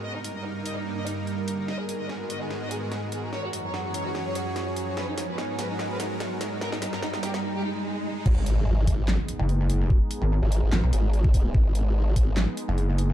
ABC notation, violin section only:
X:1
M:4/4
L:1/16
Q:"Swing 16ths" 1/4=146
K:G#m
V:1 name="Violin section"
d D D d D D d D D d D D D z D D | d G G d G G d G G d G G G z G G | c F F c F F c F F c F F F z F F | B D D B D D B D D B D D D z D D |
A D D A D D =G D D G D D D z D D | z16 | z16 | z16 |]